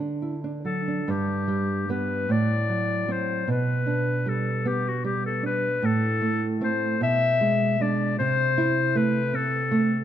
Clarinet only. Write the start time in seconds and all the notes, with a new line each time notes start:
0.65 A4
1.11 G4
1.91 B4
2.32 D5
3.12 C5
3.51 B4
4.28 A4
4.68 G4
4.88 F#4
5.06 G4
5.26 A4
5.46 B4
5.85 A4
6.64 C5
7.03 E5
7.82 D5
8.19 C5
8.97 B4
9.35 A4